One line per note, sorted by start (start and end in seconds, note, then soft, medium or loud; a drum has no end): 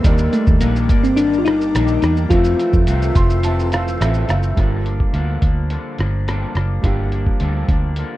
0.00 0.32 D#3 medium
0.00 2.25 G3 medium
0.00 0.34 A#3 loud
0.00 2.26 A#3 medium
0.04 0.27 D#2 loud
0.04 0.33 G3 medium
0.04 0.32 A#3 medium
0.04 0.31 D4 medium
0.04 2.27 D#4 medium
0.04 2.29 A#4 medium
0.04 2.28 A#4 medium
0.04 2.27 D5 medium
0.04 2.28 G5 medium
0.04 2.29 A#5 medium
0.04 2.29 D6 medium
0.04 kick loud
0.04 closed hi-hat medium
0.04 shaker medium
0.18 shaker medium
0.33 0.60 G3 soft
0.33 0.62 A3 medium
0.33 0.61 A#3 medium
0.33 0.61 D4 medium
0.33 closed hi-hat medium
0.33 shaker medium
0.47 0.59 D#2 loud
0.47 kick loud
0.47 shaker medium
0.60 0.90 A#1 loud
0.60 0.89 D#3 medium
0.60 0.89 G3 medium
0.60 1.05 A#3 loud
0.60 0.89 A#3 medium
0.60 0.88 D4 medium
0.60 closed hi-hat medium
0.60 shaker medium
0.76 shaker medium
0.89 1.70 G1 loud
0.89 1.17 G3 medium
0.89 1.18 A#3 medium
0.89 1.18 D4 medium
0.89 kick loud
0.89 closed hi-hat medium
0.89 shaker medium
1.03 1.18 C4 medium
1.03 shaker medium
1.16 1.46 D#3 medium
1.16 1.46 G3 medium
1.16 1.46 A#3 medium
1.16 1.39 D4 loud
1.16 1.45 D4 medium
1.16 closed hi-hat medium
1.16 shaker medium
1.33 shaker soft
1.38 1.46 F4 medium
1.45 1.74 G3 medium
1.45 1.75 A#3 medium
1.45 1.74 D4 medium
1.45 2.01 D#4 loud
1.45 cross-stick loud
1.45 closed hi-hat soft
1.45 shaker medium
1.61 shaker medium
1.75 1.97 A#1 medium
1.75 2.03 D#3 medium
1.75 2.03 G3 medium
1.75 2.03 A#3 medium
1.75 2.01 D4 medium
1.75 cross-stick medium
1.75 closed hi-hat medium
1.75 shaker medium
1.88 shaker medium
2.02 2.25 E2 medium
2.02 2.32 G3 soft
2.02 2.32 A#3 medium
2.02 2.31 D4 medium
2.02 2.15 D#4 loud
2.02 cross-stick medium
2.02 closed hi-hat soft
2.02 shaker medium
2.17 shaker soft
2.29 2.53 F2 loud
2.29 2.59 F2 medium
2.29 2.59 C3 medium
2.29 2.60 E3 medium
2.29 4.52 F3 medium
2.29 4.53 A3 medium
2.29 2.59 A3 medium
2.29 4.53 C4 medium
2.29 2.58 C4 loud
2.29 4.24 F4 loud
2.29 4.55 F4 medium
2.29 4.55 A4 medium
2.29 4.55 C6 medium
2.29 4.55 E6 loud
2.29 kick loud
2.29 closed hi-hat medium
2.29 shaker medium
2.33 4.55 A4 medium
2.33 3.99 E5 medium
2.44 shaker medium
2.59 2.87 E3 soft
2.59 2.88 A3 medium
2.59 2.87 C4 medium
2.59 closed hi-hat medium
2.59 shaker soft
2.73 2.85 F2 loud
2.73 kick medium
2.73 shaker medium
2.87 3.10 C2 medium
2.87 3.16 F2 medium
2.87 3.16 C3 medium
2.87 3.16 E3 medium
2.87 3.15 A3 medium
2.87 3.14 C4 medium
2.87 closed hi-hat medium
2.87 shaker medium
3.02 shaker medium
3.15 3.96 F1 loud
3.15 3.43 E3 medium
3.15 3.43 A3 medium
3.15 3.44 C4 medium
3.15 3.42 C6 medium
3.15 kick loud
3.15 closed hi-hat medium
3.15 shaker medium
3.30 shaker soft
3.43 3.72 C3 medium
3.43 3.72 E3 medium
3.43 3.72 A3 medium
3.43 3.71 C4 medium
3.43 3.70 A5 medium
3.43 closed hi-hat medium
3.43 shaker medium
3.60 shaker soft
3.72 4.00 E3 medium
3.72 4.00 A3 medium
3.72 4.00 C4 medium
3.72 3.99 F5 medium
3.72 cross-stick loud
3.72 closed hi-hat soft
3.72 shaker soft
3.88 shaker medium
4.00 4.23 A1 medium
4.00 4.29 F2 medium
4.00 4.29 C3 loud
4.00 4.29 E3 medium
4.00 4.28 A3 loud
4.00 4.27 C4 medium
4.00 4.27 E5 medium
4.00 cross-stick loud
4.00 closed hi-hat medium
4.00 shaker medium
4.14 shaker medium
4.28 4.51 F#1 medium
4.28 4.57 E3 medium
4.28 4.57 A3 medium
4.28 4.57 C4 medium
4.28 4.55 F5 medium
4.28 cross-stick medium
4.28 closed hi-hat soft
4.28 shaker soft
4.43 shaker medium
4.55 5.03 G1 medium
4.55 4.85 G2 medium
4.55 4.85 D3 medium
4.55 4.86 F3 medium
4.55 6.78 G3 medium
4.55 4.85 A#3 medium
4.55 6.79 D4 medium
4.55 6.80 F4 medium
4.55 kick loud
4.55 closed hi-hat medium
4.59 4.84 D4 medium
4.59 6.81 A#4 medium
4.85 5.13 F3 soft
4.85 5.13 A#3 soft
4.85 5.13 D4 medium
4.85 closed hi-hat soft
5.00 kick medium
5.13 5.36 D2 medium
5.13 5.42 G2 medium
5.13 5.42 D3 medium
5.13 5.42 F3 medium
5.13 5.42 A#3 medium
5.13 5.40 D4 medium
5.13 closed hi-hat medium
5.41 5.76 D2 medium
5.41 5.70 F3 soft
5.41 5.71 A#3 soft
5.41 5.70 D4 medium
5.41 kick medium
5.41 closed hi-hat medium
5.70 5.98 D3 medium
5.70 5.99 F3 medium
5.70 5.98 A#3 medium
5.70 5.97 D4 medium
5.70 closed hi-hat medium
5.98 6.44 G1 medium
5.98 6.27 F3 medium
5.98 6.27 A#3 medium
5.98 6.27 D4 medium
5.98 cross-stick medium
5.98 closed hi-hat soft
6.27 6.55 G2 medium
6.27 6.56 D3 medium
6.27 6.56 F3 medium
6.27 6.55 A#3 medium
6.27 6.54 D4 medium
6.27 cross-stick medium
6.27 closed hi-hat medium
6.55 6.78 F#1 medium
6.55 6.83 F3 soft
6.55 6.84 A#3 soft
6.55 6.83 D4 medium
6.55 cross-stick medium
6.55 closed hi-hat soft
6.81 7.29 G1 medium
6.81 7.12 G2 medium
6.81 7.12 D3 medium
6.81 7.12 F3 medium
6.81 8.17 G3 medium
6.81 7.12 A#3 medium
6.81 8.17 D4 medium
6.81 8.17 F4 medium
6.81 kick loud
6.81 closed hi-hat medium
6.85 7.11 D4 medium
6.85 8.17 G4 medium
7.12 7.40 F3 soft
7.12 7.40 A#3 medium
7.12 7.40 D4 medium
7.12 closed hi-hat soft
7.26 kick medium
7.40 7.63 D2 medium
7.40 7.68 G2 medium
7.40 7.69 D3 medium
7.40 7.69 F3 medium
7.40 7.68 A#3 medium
7.40 7.67 D4 medium
7.40 closed hi-hat medium
7.68 8.02 D2 medium
7.68 7.97 F3 soft
7.68 7.97 A#3 medium
7.68 7.97 D4 medium
7.68 kick loud
7.68 closed hi-hat medium
7.96 8.17 D3 medium
7.96 8.17 F3 medium
7.96 8.17 A#3 medium
7.96 8.17 D4 medium
7.96 closed hi-hat medium